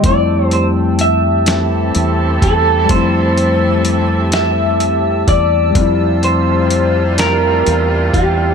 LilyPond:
<<
  \new Staff \with { instrumentName = "Analog synth pad" } { \time 6/8 \key f \major \tempo 4. = 42 <g' g'' a'' e'''>2.~ | <g' g'' a'' e'''>2.~ | <g' g'' a'' e'''>2. | }
  \new Staff \with { instrumentName = "Clean electric guitar" } { \time 6/8 \key f \major d''8 c''8 e''4. a'8 | c''4. e''4 d''8~ | d''8 c''4 bes'4 g'8 | }
  \new Staff \with { instrumentName = "Tine electric piano" } { \time 6/8 \key f \major <g a c' e'>2. | <g a c' e'>2. | <g c' e'>2. | }
  \new Staff \with { instrumentName = "Horn section" } { \time 6/8 \key f \major r4. <e c' a'>4.~ | <e c' a'>2~ <e c' a'>8 r8 | <c g f'>2. | }
  \new Staff \with { instrumentName = "Fingered electric bass" } { \clef bass \time 6/8 \key f \major f,2 e,8 e,8 | f,2~ f,8 e,8 | f,2 e,8 e,8 | }
  \new DrumStaff \with { instrumentName = "Drums" } \drummode { \time 6/8 <hh bd>8 hh8 hh8 <hh sn>8 hh8 <hh bd>8 | <hh bd>8 hh8 hh8 <hh sn>8 hh8 <hh bd>8 | <hh bd>8 hh8 hh8 <hh sn>8 hh8 <hh bd>8 | }
>>